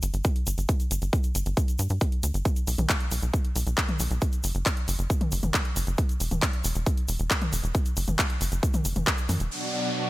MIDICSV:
0, 0, Header, 1, 5, 480
1, 0, Start_track
1, 0, Tempo, 441176
1, 750, Time_signature, 4, 2, 24, 8
1, 10988, End_track
2, 0, Start_track
2, 0, Title_t, "Analog synth pad"
2, 0, Program_c, 0, 89
2, 10349, Note_on_c, 0, 47, 82
2, 10349, Note_on_c, 0, 54, 85
2, 10349, Note_on_c, 0, 62, 84
2, 10349, Note_on_c, 0, 66, 85
2, 10517, Note_off_c, 0, 47, 0
2, 10517, Note_off_c, 0, 54, 0
2, 10517, Note_off_c, 0, 62, 0
2, 10517, Note_off_c, 0, 66, 0
2, 10588, Note_on_c, 0, 47, 86
2, 10588, Note_on_c, 0, 54, 84
2, 10588, Note_on_c, 0, 66, 84
2, 10589, Note_on_c, 0, 62, 85
2, 10756, Note_off_c, 0, 54, 0
2, 10757, Note_off_c, 0, 47, 0
2, 10757, Note_off_c, 0, 62, 0
2, 10757, Note_off_c, 0, 66, 0
2, 10828, Note_on_c, 0, 47, 90
2, 10828, Note_on_c, 0, 54, 86
2, 10828, Note_on_c, 0, 62, 87
2, 10828, Note_on_c, 0, 66, 87
2, 10988, Note_off_c, 0, 47, 0
2, 10988, Note_off_c, 0, 54, 0
2, 10988, Note_off_c, 0, 62, 0
2, 10988, Note_off_c, 0, 66, 0
2, 10988, End_track
3, 0, Start_track
3, 0, Title_t, "Analog synth bass"
3, 0, Program_c, 1, 38
3, 29, Note_on_c, 1, 31, 89
3, 127, Note_off_c, 1, 31, 0
3, 149, Note_on_c, 1, 31, 77
3, 247, Note_off_c, 1, 31, 0
3, 509, Note_on_c, 1, 31, 90
3, 607, Note_off_c, 1, 31, 0
3, 629, Note_on_c, 1, 31, 78
3, 727, Note_off_c, 1, 31, 0
3, 989, Note_on_c, 1, 31, 93
3, 1087, Note_off_c, 1, 31, 0
3, 1109, Note_on_c, 1, 31, 79
3, 1207, Note_off_c, 1, 31, 0
3, 1469, Note_on_c, 1, 31, 90
3, 1567, Note_off_c, 1, 31, 0
3, 1590, Note_on_c, 1, 31, 80
3, 1687, Note_off_c, 1, 31, 0
3, 1949, Note_on_c, 1, 43, 92
3, 2047, Note_off_c, 1, 43, 0
3, 2069, Note_on_c, 1, 43, 78
3, 2167, Note_off_c, 1, 43, 0
3, 2429, Note_on_c, 1, 38, 89
3, 2527, Note_off_c, 1, 38, 0
3, 2549, Note_on_c, 1, 31, 78
3, 2647, Note_off_c, 1, 31, 0
3, 2909, Note_on_c, 1, 35, 92
3, 3007, Note_off_c, 1, 35, 0
3, 3029, Note_on_c, 1, 35, 82
3, 3127, Note_off_c, 1, 35, 0
3, 3389, Note_on_c, 1, 35, 91
3, 3487, Note_off_c, 1, 35, 0
3, 3509, Note_on_c, 1, 35, 79
3, 3607, Note_off_c, 1, 35, 0
3, 3869, Note_on_c, 1, 35, 92
3, 3967, Note_off_c, 1, 35, 0
3, 3989, Note_on_c, 1, 35, 78
3, 4087, Note_off_c, 1, 35, 0
3, 4349, Note_on_c, 1, 35, 94
3, 4447, Note_off_c, 1, 35, 0
3, 4469, Note_on_c, 1, 35, 79
3, 4567, Note_off_c, 1, 35, 0
3, 4829, Note_on_c, 1, 30, 93
3, 4927, Note_off_c, 1, 30, 0
3, 4948, Note_on_c, 1, 30, 80
3, 5047, Note_off_c, 1, 30, 0
3, 5308, Note_on_c, 1, 30, 94
3, 5406, Note_off_c, 1, 30, 0
3, 5428, Note_on_c, 1, 30, 80
3, 5527, Note_off_c, 1, 30, 0
3, 5788, Note_on_c, 1, 30, 95
3, 5887, Note_off_c, 1, 30, 0
3, 5908, Note_on_c, 1, 30, 80
3, 6007, Note_off_c, 1, 30, 0
3, 6268, Note_on_c, 1, 30, 89
3, 6367, Note_off_c, 1, 30, 0
3, 6389, Note_on_c, 1, 30, 81
3, 6487, Note_off_c, 1, 30, 0
3, 6748, Note_on_c, 1, 28, 93
3, 6847, Note_off_c, 1, 28, 0
3, 6869, Note_on_c, 1, 28, 79
3, 6967, Note_off_c, 1, 28, 0
3, 7229, Note_on_c, 1, 28, 94
3, 7327, Note_off_c, 1, 28, 0
3, 7349, Note_on_c, 1, 28, 81
3, 7447, Note_off_c, 1, 28, 0
3, 7709, Note_on_c, 1, 28, 92
3, 7807, Note_off_c, 1, 28, 0
3, 7829, Note_on_c, 1, 28, 82
3, 7927, Note_off_c, 1, 28, 0
3, 8188, Note_on_c, 1, 28, 94
3, 8286, Note_off_c, 1, 28, 0
3, 8309, Note_on_c, 1, 28, 81
3, 8407, Note_off_c, 1, 28, 0
3, 8669, Note_on_c, 1, 30, 97
3, 8767, Note_off_c, 1, 30, 0
3, 8789, Note_on_c, 1, 30, 80
3, 8887, Note_off_c, 1, 30, 0
3, 9149, Note_on_c, 1, 30, 94
3, 9247, Note_off_c, 1, 30, 0
3, 9269, Note_on_c, 1, 30, 81
3, 9367, Note_off_c, 1, 30, 0
3, 9629, Note_on_c, 1, 30, 94
3, 9727, Note_off_c, 1, 30, 0
3, 9749, Note_on_c, 1, 30, 79
3, 9847, Note_off_c, 1, 30, 0
3, 10108, Note_on_c, 1, 42, 94
3, 10207, Note_off_c, 1, 42, 0
3, 10229, Note_on_c, 1, 28, 83
3, 10327, Note_off_c, 1, 28, 0
3, 10988, End_track
4, 0, Start_track
4, 0, Title_t, "Downlifter"
4, 0, Program_c, 2, 103
4, 10349, Note_on_c, 2, 60, 65
4, 10988, Note_off_c, 2, 60, 0
4, 10988, End_track
5, 0, Start_track
5, 0, Title_t, "Drums"
5, 27, Note_on_c, 9, 82, 89
5, 29, Note_on_c, 9, 42, 87
5, 136, Note_off_c, 9, 82, 0
5, 138, Note_off_c, 9, 42, 0
5, 147, Note_on_c, 9, 82, 37
5, 149, Note_on_c, 9, 42, 35
5, 256, Note_off_c, 9, 82, 0
5, 258, Note_off_c, 9, 42, 0
5, 266, Note_on_c, 9, 82, 54
5, 269, Note_on_c, 9, 36, 117
5, 269, Note_on_c, 9, 42, 63
5, 375, Note_off_c, 9, 82, 0
5, 378, Note_off_c, 9, 36, 0
5, 378, Note_off_c, 9, 42, 0
5, 389, Note_on_c, 9, 42, 35
5, 498, Note_off_c, 9, 42, 0
5, 509, Note_on_c, 9, 42, 86
5, 509, Note_on_c, 9, 82, 97
5, 618, Note_off_c, 9, 42, 0
5, 618, Note_off_c, 9, 82, 0
5, 629, Note_on_c, 9, 42, 36
5, 633, Note_on_c, 9, 82, 40
5, 738, Note_off_c, 9, 42, 0
5, 742, Note_off_c, 9, 82, 0
5, 748, Note_on_c, 9, 82, 52
5, 749, Note_on_c, 9, 36, 115
5, 749, Note_on_c, 9, 42, 60
5, 857, Note_off_c, 9, 36, 0
5, 857, Note_off_c, 9, 82, 0
5, 858, Note_off_c, 9, 42, 0
5, 869, Note_on_c, 9, 42, 37
5, 871, Note_on_c, 9, 82, 38
5, 978, Note_off_c, 9, 42, 0
5, 980, Note_off_c, 9, 82, 0
5, 989, Note_on_c, 9, 42, 82
5, 997, Note_on_c, 9, 82, 93
5, 1098, Note_off_c, 9, 42, 0
5, 1106, Note_off_c, 9, 82, 0
5, 1109, Note_on_c, 9, 42, 35
5, 1110, Note_on_c, 9, 82, 36
5, 1218, Note_off_c, 9, 42, 0
5, 1218, Note_off_c, 9, 82, 0
5, 1229, Note_on_c, 9, 36, 116
5, 1229, Note_on_c, 9, 42, 57
5, 1236, Note_on_c, 9, 82, 45
5, 1337, Note_off_c, 9, 36, 0
5, 1338, Note_off_c, 9, 42, 0
5, 1344, Note_off_c, 9, 82, 0
5, 1345, Note_on_c, 9, 82, 34
5, 1349, Note_on_c, 9, 42, 37
5, 1453, Note_off_c, 9, 82, 0
5, 1458, Note_off_c, 9, 42, 0
5, 1469, Note_on_c, 9, 42, 88
5, 1473, Note_on_c, 9, 82, 84
5, 1578, Note_off_c, 9, 42, 0
5, 1581, Note_off_c, 9, 82, 0
5, 1589, Note_on_c, 9, 42, 36
5, 1589, Note_on_c, 9, 82, 37
5, 1697, Note_off_c, 9, 82, 0
5, 1698, Note_off_c, 9, 42, 0
5, 1709, Note_on_c, 9, 36, 118
5, 1709, Note_on_c, 9, 42, 60
5, 1713, Note_on_c, 9, 82, 52
5, 1818, Note_off_c, 9, 36, 0
5, 1818, Note_off_c, 9, 42, 0
5, 1821, Note_off_c, 9, 82, 0
5, 1829, Note_on_c, 9, 42, 36
5, 1839, Note_on_c, 9, 82, 38
5, 1938, Note_off_c, 9, 42, 0
5, 1946, Note_off_c, 9, 82, 0
5, 1946, Note_on_c, 9, 82, 89
5, 1949, Note_on_c, 9, 42, 85
5, 2055, Note_off_c, 9, 82, 0
5, 2058, Note_off_c, 9, 42, 0
5, 2060, Note_on_c, 9, 82, 41
5, 2069, Note_on_c, 9, 42, 35
5, 2168, Note_off_c, 9, 82, 0
5, 2178, Note_off_c, 9, 42, 0
5, 2185, Note_on_c, 9, 82, 51
5, 2189, Note_on_c, 9, 36, 119
5, 2189, Note_on_c, 9, 42, 62
5, 2293, Note_off_c, 9, 82, 0
5, 2298, Note_off_c, 9, 36, 0
5, 2298, Note_off_c, 9, 42, 0
5, 2309, Note_on_c, 9, 42, 34
5, 2418, Note_off_c, 9, 42, 0
5, 2429, Note_on_c, 9, 42, 81
5, 2431, Note_on_c, 9, 82, 87
5, 2537, Note_off_c, 9, 42, 0
5, 2540, Note_off_c, 9, 82, 0
5, 2549, Note_on_c, 9, 42, 37
5, 2554, Note_on_c, 9, 82, 41
5, 2658, Note_off_c, 9, 42, 0
5, 2663, Note_off_c, 9, 82, 0
5, 2669, Note_on_c, 9, 36, 114
5, 2669, Note_on_c, 9, 42, 59
5, 2673, Note_on_c, 9, 82, 44
5, 2777, Note_off_c, 9, 36, 0
5, 2777, Note_off_c, 9, 42, 0
5, 2782, Note_off_c, 9, 82, 0
5, 2787, Note_on_c, 9, 82, 34
5, 2789, Note_on_c, 9, 42, 37
5, 2896, Note_off_c, 9, 82, 0
5, 2897, Note_off_c, 9, 42, 0
5, 2909, Note_on_c, 9, 46, 99
5, 2912, Note_on_c, 9, 82, 83
5, 3018, Note_off_c, 9, 46, 0
5, 3021, Note_off_c, 9, 82, 0
5, 3023, Note_on_c, 9, 82, 36
5, 3029, Note_on_c, 9, 42, 36
5, 3029, Note_on_c, 9, 47, 62
5, 3132, Note_off_c, 9, 82, 0
5, 3138, Note_off_c, 9, 42, 0
5, 3138, Note_off_c, 9, 47, 0
5, 3148, Note_on_c, 9, 82, 48
5, 3149, Note_on_c, 9, 36, 115
5, 3149, Note_on_c, 9, 39, 108
5, 3149, Note_on_c, 9, 42, 58
5, 3257, Note_off_c, 9, 36, 0
5, 3257, Note_off_c, 9, 82, 0
5, 3258, Note_off_c, 9, 39, 0
5, 3258, Note_off_c, 9, 42, 0
5, 3269, Note_on_c, 9, 42, 36
5, 3377, Note_off_c, 9, 42, 0
5, 3388, Note_on_c, 9, 82, 89
5, 3389, Note_on_c, 9, 46, 106
5, 3497, Note_off_c, 9, 46, 0
5, 3497, Note_off_c, 9, 82, 0
5, 3505, Note_on_c, 9, 82, 36
5, 3509, Note_on_c, 9, 42, 37
5, 3613, Note_off_c, 9, 82, 0
5, 3618, Note_off_c, 9, 42, 0
5, 3629, Note_on_c, 9, 36, 111
5, 3629, Note_on_c, 9, 42, 59
5, 3632, Note_on_c, 9, 82, 47
5, 3738, Note_off_c, 9, 36, 0
5, 3738, Note_off_c, 9, 42, 0
5, 3741, Note_off_c, 9, 82, 0
5, 3749, Note_on_c, 9, 42, 36
5, 3858, Note_off_c, 9, 42, 0
5, 3869, Note_on_c, 9, 46, 101
5, 3875, Note_on_c, 9, 82, 89
5, 3977, Note_off_c, 9, 46, 0
5, 3984, Note_off_c, 9, 82, 0
5, 3989, Note_on_c, 9, 42, 35
5, 3990, Note_on_c, 9, 82, 41
5, 4098, Note_off_c, 9, 42, 0
5, 4099, Note_off_c, 9, 82, 0
5, 4106, Note_on_c, 9, 82, 54
5, 4109, Note_on_c, 9, 36, 115
5, 4109, Note_on_c, 9, 39, 109
5, 4109, Note_on_c, 9, 42, 63
5, 4215, Note_off_c, 9, 82, 0
5, 4217, Note_off_c, 9, 36, 0
5, 4218, Note_off_c, 9, 39, 0
5, 4218, Note_off_c, 9, 42, 0
5, 4229, Note_on_c, 9, 42, 35
5, 4229, Note_on_c, 9, 47, 77
5, 4338, Note_off_c, 9, 42, 0
5, 4338, Note_off_c, 9, 47, 0
5, 4345, Note_on_c, 9, 82, 94
5, 4349, Note_on_c, 9, 46, 100
5, 4454, Note_off_c, 9, 82, 0
5, 4458, Note_off_c, 9, 46, 0
5, 4469, Note_on_c, 9, 42, 36
5, 4471, Note_on_c, 9, 82, 36
5, 4578, Note_off_c, 9, 42, 0
5, 4580, Note_off_c, 9, 82, 0
5, 4588, Note_on_c, 9, 82, 46
5, 4589, Note_on_c, 9, 36, 110
5, 4589, Note_on_c, 9, 42, 60
5, 4697, Note_off_c, 9, 36, 0
5, 4697, Note_off_c, 9, 82, 0
5, 4698, Note_off_c, 9, 42, 0
5, 4705, Note_on_c, 9, 82, 35
5, 4709, Note_on_c, 9, 42, 38
5, 4814, Note_off_c, 9, 82, 0
5, 4818, Note_off_c, 9, 42, 0
5, 4827, Note_on_c, 9, 82, 79
5, 4829, Note_on_c, 9, 46, 100
5, 4936, Note_off_c, 9, 82, 0
5, 4938, Note_off_c, 9, 46, 0
5, 4949, Note_on_c, 9, 42, 36
5, 4951, Note_on_c, 9, 82, 37
5, 5058, Note_off_c, 9, 42, 0
5, 5059, Note_off_c, 9, 82, 0
5, 5068, Note_on_c, 9, 36, 110
5, 5069, Note_on_c, 9, 39, 109
5, 5069, Note_on_c, 9, 42, 62
5, 5072, Note_on_c, 9, 82, 51
5, 5177, Note_off_c, 9, 36, 0
5, 5178, Note_off_c, 9, 39, 0
5, 5178, Note_off_c, 9, 42, 0
5, 5181, Note_off_c, 9, 82, 0
5, 5189, Note_on_c, 9, 42, 39
5, 5298, Note_off_c, 9, 42, 0
5, 5309, Note_on_c, 9, 46, 102
5, 5314, Note_on_c, 9, 82, 87
5, 5417, Note_off_c, 9, 46, 0
5, 5423, Note_off_c, 9, 82, 0
5, 5429, Note_on_c, 9, 42, 38
5, 5429, Note_on_c, 9, 82, 39
5, 5537, Note_off_c, 9, 42, 0
5, 5538, Note_off_c, 9, 82, 0
5, 5548, Note_on_c, 9, 42, 63
5, 5549, Note_on_c, 9, 36, 107
5, 5553, Note_on_c, 9, 82, 51
5, 5657, Note_off_c, 9, 36, 0
5, 5657, Note_off_c, 9, 42, 0
5, 5661, Note_off_c, 9, 82, 0
5, 5668, Note_on_c, 9, 42, 38
5, 5668, Note_on_c, 9, 47, 83
5, 5777, Note_off_c, 9, 42, 0
5, 5777, Note_off_c, 9, 47, 0
5, 5786, Note_on_c, 9, 82, 79
5, 5788, Note_on_c, 9, 46, 102
5, 5895, Note_off_c, 9, 82, 0
5, 5897, Note_off_c, 9, 46, 0
5, 5906, Note_on_c, 9, 82, 35
5, 5908, Note_on_c, 9, 42, 37
5, 5908, Note_on_c, 9, 47, 59
5, 6014, Note_off_c, 9, 82, 0
5, 6017, Note_off_c, 9, 42, 0
5, 6017, Note_off_c, 9, 47, 0
5, 6028, Note_on_c, 9, 39, 112
5, 6028, Note_on_c, 9, 42, 63
5, 6029, Note_on_c, 9, 36, 116
5, 6033, Note_on_c, 9, 82, 48
5, 6137, Note_off_c, 9, 36, 0
5, 6137, Note_off_c, 9, 39, 0
5, 6137, Note_off_c, 9, 42, 0
5, 6142, Note_off_c, 9, 82, 0
5, 6148, Note_on_c, 9, 42, 37
5, 6257, Note_off_c, 9, 42, 0
5, 6268, Note_on_c, 9, 46, 96
5, 6271, Note_on_c, 9, 82, 86
5, 6377, Note_off_c, 9, 46, 0
5, 6380, Note_off_c, 9, 82, 0
5, 6389, Note_on_c, 9, 42, 38
5, 6394, Note_on_c, 9, 82, 37
5, 6497, Note_off_c, 9, 42, 0
5, 6503, Note_off_c, 9, 82, 0
5, 6505, Note_on_c, 9, 82, 45
5, 6508, Note_on_c, 9, 36, 109
5, 6509, Note_on_c, 9, 42, 64
5, 6614, Note_off_c, 9, 82, 0
5, 6617, Note_off_c, 9, 36, 0
5, 6617, Note_off_c, 9, 42, 0
5, 6628, Note_on_c, 9, 42, 40
5, 6642, Note_on_c, 9, 82, 31
5, 6737, Note_off_c, 9, 42, 0
5, 6749, Note_on_c, 9, 46, 97
5, 6751, Note_off_c, 9, 82, 0
5, 6753, Note_on_c, 9, 82, 83
5, 6857, Note_off_c, 9, 46, 0
5, 6861, Note_off_c, 9, 82, 0
5, 6868, Note_on_c, 9, 42, 40
5, 6868, Note_on_c, 9, 47, 59
5, 6870, Note_on_c, 9, 82, 37
5, 6977, Note_off_c, 9, 42, 0
5, 6977, Note_off_c, 9, 47, 0
5, 6979, Note_off_c, 9, 82, 0
5, 6988, Note_on_c, 9, 36, 114
5, 6988, Note_on_c, 9, 39, 111
5, 6988, Note_on_c, 9, 42, 65
5, 6997, Note_on_c, 9, 82, 48
5, 7097, Note_off_c, 9, 36, 0
5, 7097, Note_off_c, 9, 39, 0
5, 7097, Note_off_c, 9, 42, 0
5, 7106, Note_off_c, 9, 82, 0
5, 7109, Note_on_c, 9, 42, 41
5, 7218, Note_off_c, 9, 42, 0
5, 7228, Note_on_c, 9, 82, 84
5, 7229, Note_on_c, 9, 46, 102
5, 7337, Note_off_c, 9, 46, 0
5, 7337, Note_off_c, 9, 82, 0
5, 7344, Note_on_c, 9, 82, 36
5, 7349, Note_on_c, 9, 42, 41
5, 7453, Note_off_c, 9, 82, 0
5, 7458, Note_off_c, 9, 42, 0
5, 7468, Note_on_c, 9, 36, 113
5, 7469, Note_on_c, 9, 42, 68
5, 7470, Note_on_c, 9, 82, 48
5, 7577, Note_off_c, 9, 36, 0
5, 7577, Note_off_c, 9, 42, 0
5, 7578, Note_off_c, 9, 82, 0
5, 7589, Note_on_c, 9, 42, 41
5, 7697, Note_off_c, 9, 42, 0
5, 7708, Note_on_c, 9, 46, 101
5, 7708, Note_on_c, 9, 82, 90
5, 7817, Note_off_c, 9, 46, 0
5, 7817, Note_off_c, 9, 82, 0
5, 7825, Note_on_c, 9, 82, 36
5, 7829, Note_on_c, 9, 42, 38
5, 7934, Note_off_c, 9, 82, 0
5, 7937, Note_off_c, 9, 42, 0
5, 7945, Note_on_c, 9, 82, 49
5, 7948, Note_on_c, 9, 39, 116
5, 7948, Note_on_c, 9, 42, 68
5, 7949, Note_on_c, 9, 36, 112
5, 8054, Note_off_c, 9, 82, 0
5, 8057, Note_off_c, 9, 36, 0
5, 8057, Note_off_c, 9, 39, 0
5, 8057, Note_off_c, 9, 42, 0
5, 8069, Note_on_c, 9, 42, 39
5, 8069, Note_on_c, 9, 47, 77
5, 8178, Note_off_c, 9, 42, 0
5, 8178, Note_off_c, 9, 47, 0
5, 8188, Note_on_c, 9, 46, 97
5, 8192, Note_on_c, 9, 82, 90
5, 8297, Note_off_c, 9, 46, 0
5, 8301, Note_off_c, 9, 82, 0
5, 8308, Note_on_c, 9, 42, 39
5, 8314, Note_on_c, 9, 82, 37
5, 8417, Note_off_c, 9, 42, 0
5, 8423, Note_off_c, 9, 82, 0
5, 8428, Note_on_c, 9, 42, 65
5, 8429, Note_on_c, 9, 36, 112
5, 8431, Note_on_c, 9, 82, 49
5, 8537, Note_off_c, 9, 36, 0
5, 8537, Note_off_c, 9, 42, 0
5, 8540, Note_off_c, 9, 82, 0
5, 8548, Note_on_c, 9, 82, 36
5, 8549, Note_on_c, 9, 42, 42
5, 8657, Note_off_c, 9, 42, 0
5, 8657, Note_off_c, 9, 82, 0
5, 8668, Note_on_c, 9, 82, 83
5, 8669, Note_on_c, 9, 46, 102
5, 8776, Note_off_c, 9, 82, 0
5, 8777, Note_off_c, 9, 46, 0
5, 8785, Note_on_c, 9, 82, 38
5, 8789, Note_on_c, 9, 42, 40
5, 8789, Note_on_c, 9, 47, 58
5, 8894, Note_off_c, 9, 82, 0
5, 8897, Note_off_c, 9, 42, 0
5, 8897, Note_off_c, 9, 47, 0
5, 8909, Note_on_c, 9, 36, 112
5, 8909, Note_on_c, 9, 39, 114
5, 8909, Note_on_c, 9, 42, 68
5, 8910, Note_on_c, 9, 82, 46
5, 9017, Note_off_c, 9, 36, 0
5, 9018, Note_off_c, 9, 39, 0
5, 9018, Note_off_c, 9, 42, 0
5, 9018, Note_off_c, 9, 82, 0
5, 9029, Note_on_c, 9, 42, 42
5, 9137, Note_off_c, 9, 42, 0
5, 9148, Note_on_c, 9, 46, 106
5, 9155, Note_on_c, 9, 82, 83
5, 9257, Note_off_c, 9, 46, 0
5, 9264, Note_off_c, 9, 82, 0
5, 9267, Note_on_c, 9, 82, 41
5, 9269, Note_on_c, 9, 42, 42
5, 9376, Note_off_c, 9, 82, 0
5, 9378, Note_off_c, 9, 42, 0
5, 9388, Note_on_c, 9, 36, 111
5, 9389, Note_on_c, 9, 42, 68
5, 9398, Note_on_c, 9, 82, 50
5, 9497, Note_off_c, 9, 36, 0
5, 9498, Note_off_c, 9, 42, 0
5, 9504, Note_off_c, 9, 82, 0
5, 9504, Note_on_c, 9, 82, 37
5, 9509, Note_on_c, 9, 42, 42
5, 9509, Note_on_c, 9, 47, 76
5, 9613, Note_off_c, 9, 82, 0
5, 9618, Note_off_c, 9, 42, 0
5, 9618, Note_off_c, 9, 47, 0
5, 9629, Note_on_c, 9, 46, 105
5, 9629, Note_on_c, 9, 82, 91
5, 9738, Note_off_c, 9, 46, 0
5, 9738, Note_off_c, 9, 82, 0
5, 9744, Note_on_c, 9, 82, 37
5, 9749, Note_on_c, 9, 42, 39
5, 9749, Note_on_c, 9, 47, 58
5, 9853, Note_off_c, 9, 82, 0
5, 9858, Note_off_c, 9, 42, 0
5, 9858, Note_off_c, 9, 47, 0
5, 9868, Note_on_c, 9, 36, 116
5, 9869, Note_on_c, 9, 39, 123
5, 9869, Note_on_c, 9, 42, 71
5, 9876, Note_on_c, 9, 82, 49
5, 9977, Note_off_c, 9, 36, 0
5, 9978, Note_off_c, 9, 39, 0
5, 9978, Note_off_c, 9, 42, 0
5, 9984, Note_off_c, 9, 82, 0
5, 9985, Note_on_c, 9, 82, 33
5, 9989, Note_on_c, 9, 42, 40
5, 10094, Note_off_c, 9, 82, 0
5, 10098, Note_off_c, 9, 42, 0
5, 10109, Note_on_c, 9, 46, 99
5, 10109, Note_on_c, 9, 47, 61
5, 10111, Note_on_c, 9, 82, 84
5, 10218, Note_off_c, 9, 46, 0
5, 10218, Note_off_c, 9, 47, 0
5, 10220, Note_off_c, 9, 82, 0
5, 10226, Note_on_c, 9, 82, 35
5, 10229, Note_on_c, 9, 42, 41
5, 10335, Note_off_c, 9, 82, 0
5, 10338, Note_off_c, 9, 42, 0
5, 10988, End_track
0, 0, End_of_file